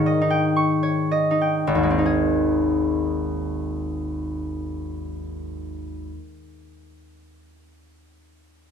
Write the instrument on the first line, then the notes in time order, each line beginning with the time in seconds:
harp
Already playing: G#2 D#3 D#4 C#5 G5 C#6
0.06 D#5
0.21 D#4
0.30 G5
0.56 C#6
0.83 C#5
1.11 D#5
1.31 D#4
1.41 G5
1.67 G#1
1.75 D#2
1.83 G#3
1.90 C4
1.98 D#4
2.06 G#4